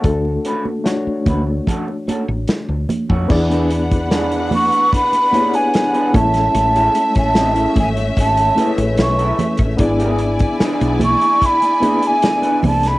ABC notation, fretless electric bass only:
X:1
M:4/4
L:1/16
Q:1/4=74
K:Emix
V:1 name="Fretless electric bass" clef=bass
D,,2 z4 D,,2 z3 A,,, z D,, z =F,, | E,,6- E,, z6 z A,,,2 | A,,,2 z A,,,3 G,,,2 G,,,2 z A,,, B,,,2 z A,,, | G,,,4 z B,,,2 z6 z =C,,2 |]